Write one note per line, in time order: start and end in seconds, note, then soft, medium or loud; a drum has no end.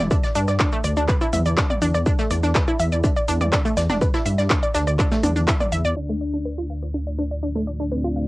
0.11 0.17 D4 medium
0.11 kick loud
0.11 cross-stick medium
0.11 closed hi-hat medium
0.11 shaker medium
0.24 0.32 D5 medium
0.24 snare soft
0.24 shaker soft
0.35 0.46 G2 medium
0.35 0.39 D4 loud
0.35 closed hi-hat medium
0.35 open hi-hat loud
0.35 shaker medium
0.48 0.58 G2 medium
0.48 0.53 D5 medium
0.48 cross-stick medium
0.48 snare soft
0.48 shaker soft
0.59 0.66 D4 loud
0.59 kick loud
0.59 snare loud
0.59 clap loud
0.59 closed hi-hat medium
0.59 shaker medium
0.72 0.78 A3 medium
0.72 shaker soft
0.84 0.94 D2 medium
0.84 0.88 D5 medium
0.84 cross-stick medium
0.84 closed hi-hat medium
0.84 open hi-hat loud
0.84 shaker medium
0.97 1.06 D2 medium
0.97 1.02 D4 loud
0.97 shaker soft
1.09 1.14 B4 medium
1.09 kick loud
1.09 clap medium
1.09 closed hi-hat medium
1.09 shaker medium
1.21 1.24 E4 loud
1.21 cross-stick medium
1.21 shaker soft
1.33 1.43 E2 loud
1.33 1.39 E5 medium
1.33 closed hi-hat medium
1.33 mid tom medium
1.33 open hi-hat loud
1.33 shaker medium
1.45 1.55 E2 medium
1.45 1.51 D5 medium
1.45 closed hi-hat soft
1.45 shaker soft
1.57 1.63 D4 medium
1.57 kick loud
1.57 cross-stick medium
1.57 snare loud
1.57 clap loud
1.57 closed hi-hat medium
1.57 shaker medium
1.70 1.78 D5 medium
1.70 mid tom medium
1.70 shaker soft
1.81 1.92 E2 loud
1.81 1.85 D4 loud
1.81 closed hi-hat medium
1.81 open hi-hat loud
1.81 shaker medium
1.94 2.04 E2 medium
1.94 2.00 D5 medium
1.94 cross-stick medium
1.94 closed hi-hat soft
1.94 shaker soft
2.06 2.12 D4 loud
2.06 kick loud
2.06 closed hi-hat medium
2.06 shaker medium
2.19 2.24 A3 loud
2.19 snare soft
2.19 shaker soft
2.30 2.41 E2 medium
2.30 2.34 D5 medium
2.30 cross-stick soft
2.30 closed hi-hat medium
2.30 open hi-hat loud
2.30 shaker medium
2.43 2.53 E2 medium
2.43 2.49 D4 loud
2.43 snare soft
2.43 shaker soft
2.54 2.61 B4 medium
2.54 kick loud
2.54 snare loud
2.54 clap loud
2.54 closed hi-hat medium
2.54 shaker medium
2.68 2.71 E4 loud
2.68 cross-stick soft
2.68 shaker soft
2.79 2.90 E2 medium
2.79 2.85 E5 medium
2.79 closed hi-hat medium
2.79 open hi-hat loud
2.79 shaker medium
2.92 3.02 E2 medium
2.92 2.97 D5 medium
2.92 shaker soft
3.04 3.09 D4 medium
3.04 kick loud
3.04 cross-stick medium
3.04 closed hi-hat medium
3.04 shaker medium
3.16 3.24 D5 medium
3.16 shaker soft
3.28 3.38 E2 medium
3.28 3.32 D4 loud
3.28 closed hi-hat medium
3.28 open hi-hat loud
3.28 shaker medium
3.41 3.50 E2 medium
3.41 3.46 D5 medium
3.41 cross-stick medium
3.41 closed hi-hat soft
3.41 mid tom medium
3.41 shaker soft
3.52 3.58 D4 loud
3.52 kick loud
3.52 snare loud
3.52 clap loud
3.52 closed hi-hat medium
3.52 shaker medium
3.65 3.70 A3 loud
3.65 shaker soft
3.77 3.87 E2 loud
3.77 3.80 D5 medium
3.77 cross-stick soft
3.77 snare loud
3.77 closed hi-hat medium
3.77 open hi-hat loud
3.77 shaker medium
3.90 3.99 E1 medium
3.90 3.95 D4 loud
3.90 snare loud
3.90 closed hi-hat medium
3.90 mid tom loud
3.90 shaker soft
4.01 4.07 B4 medium
4.01 kick loud
4.01 closed hi-hat medium
4.01 shaker medium
4.14 4.17 E4 loud
4.14 cross-stick soft
4.14 snare medium
4.14 shaker soft
4.25 4.36 G2 loud
4.25 4.31 E5 medium
4.25 closed hi-hat medium
4.25 open hi-hat loud
4.25 shaker medium
4.38 4.48 G2 medium
4.38 4.44 D5 medium
4.38 snare soft
4.38 shaker soft
4.50 4.56 D4 medium
4.50 kick loud
4.50 cross-stick soft
4.50 snare loud
4.50 clap loud
4.50 closed hi-hat medium
4.50 shaker medium
4.63 4.71 D5 medium
4.63 shaker soft
4.74 4.85 D2 medium
4.74 4.78 D4 loud
4.74 snare loud
4.74 closed hi-hat medium
4.74 open hi-hat loud
4.74 shaker medium
4.87 4.97 D2 medium
4.87 4.92 D5 medium
4.87 cross-stick medium
4.87 shaker soft
4.99 5.05 D4 loud
4.99 kick loud
4.99 clap medium
4.99 closed hi-hat medium
4.99 shaker medium
5.11 5.17 A3 loud
5.11 snare loud
5.11 closed hi-hat medium
5.11 shaker soft
5.23 5.34 E2 loud
5.23 5.32 D4 loud
5.23 cross-stick medium
5.23 mid tom medium
5.23 open hi-hat loud
5.23 shaker medium
5.36 5.45 E2 medium
5.36 5.41 D4 medium
5.36 closed hi-hat medium
5.36 shaker soft
5.47 5.53 E4 loud
5.47 kick loud
5.47 snare loud
5.47 clap loud
5.47 closed hi-hat medium
5.47 shaker medium
5.60 5.66 D5 medium
5.60 cross-stick medium
5.60 mid tom medium
5.60 shaker soft
5.72 5.82 E2 medium
5.72 5.78 E5 medium
5.72 closed hi-hat medium
5.72 open hi-hat loud
5.72 shaker medium
5.85 5.94 E2 medium
5.85 5.90 D5 loud
5.85 closed hi-hat soft
5.85 shaker soft
5.96 8.28 A3 medium
5.96 6.02 D4 loud
5.96 6.85 D4 loud
5.96 8.28 D4 medium
5.96 8.28 F4 medium
5.96 8.28 D5 medium
6.09 6.14 A3 medium
6.09 cross-stick soft
6.21 6.24 D5 medium
6.33 6.39 D4 loud
6.45 6.51 B4 medium
6.45 cross-stick soft
6.58 6.61 F4 medium
6.70 6.75 F5 medium
6.82 6.88 D5 medium
6.82 cross-stick soft
6.94 7.00 D4 medium
7.07 7.15 D5 medium
7.18 7.22 D4 loud
7.18 cross-stick medium
7.31 7.36 D5 medium
7.43 7.48 D4 loud
7.55 7.61 A3 loud
7.55 cross-stick soft
7.67 7.71 D5 medium
7.80 7.85 D4 loud
7.80 shaker soft
7.92 8.28 C4 loud
7.92 7.97 B4 medium
7.92 cross-stick soft
8.04 8.07 F4 medium
8.16 8.22 F5 medium
8.16 shaker medium